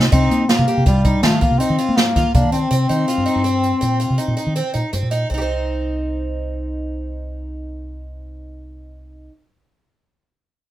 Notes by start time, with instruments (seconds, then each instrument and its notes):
Already playing: fingered electric bass C3
0.00 snare
0.12 fingered electric bass C3, bass clarinet C4, twelve-string acoustic guitar D#4, kick, closed hi-hat
0.31 fingered electric bass A#3, closed hi-hat
0.49 bass clarinet A#3, twelve-string acoustic guitar F4, snare, closed hi-hat
0.59 fingered electric bass C3
0.68 twelve-string acoustic guitar G4, closed hi-hat
0.77 fingered electric bass C3
0.86 bass clarinet G3, twelve-string acoustic guitar F4, kick, closed hi-hat
1.05 twelve-string acoustic guitar D#4, kick, closed hi-hat
1.23 fingered electric bass D#3, bass clarinet A3, twelve-string acoustic guitar F4, snare, closed hi-hat
1.41 bass clarinet A#3, twelve-string acoustic guitar F4, kick, closed hi-hat
1.51 fingered electric bass C3
1.59 bass clarinet C4, twelve-string acoustic guitar D#4, closed hi-hat
1.70 fingered electric bass D#3
1.79 twelve-string acoustic guitar F4, closed hi-hat
1.89 fingered electric bass A#3
1.97 bass clarinet A#3, snare, closed hi-hat
2.16 fingered electric bass D#3, twelve-string acoustic guitar F4, kick, snare, closed hi-hat
2.34 fingered electric bass C3, bass clarinet A#3, twelve-string acoustic guitar D4, kick, closed hi-hat
2.44 fingered electric bass D#3
2.52 bass clarinet C4, twelve-string acoustic guitar C4, closed hi-hat
2.71 fingered electric bass C3, twelve-string acoustic guitar C4, closed hi-hat
2.89 fingered electric bass D#3, twelve-string acoustic guitar D#4, closed hi-hat
3.08 twelve-string acoustic guitar F4, closed hi-hat
3.18 fingered electric bass G2
3.26 twelve-string acoustic guitar D#4, closed hi-hat
3.36 fingered electric bass G2
3.44 twelve-string acoustic guitar C4, closed hi-hat
3.63 closed hi-hat
3.81 fingered electric bass A#2, twelve-string acoustic guitar C4, closed hi-hat
4.00 twelve-string acoustic guitar F4, closed hi-hat
4.10 fingered electric bass C3
4.18 twelve-string acoustic guitar D#4, closed hi-hat
4.28 fingered electric bass A#2
4.37 twelve-string acoustic guitar D#4, closed hi-hat
4.46 fingered electric bass D#3
4.56 twelve-string acoustic guitar C4, closed hi-hat
4.74 fingered electric bass A#2, twelve-string acoustic guitar D#4, closed hi-hat
4.93 fingered electric bass G2, twelve-string acoustic guitar C4, closed hi-hat
5.02 fingered electric bass A#2
5.11 twelve-string acoustic guitar D#4, closed hi-hat
5.30 fingered electric bass C2, twelve-string acoustic guitar C4
5.34 twelve-string acoustic guitar D#4 G4
5.42 twelve-string acoustic guitar C5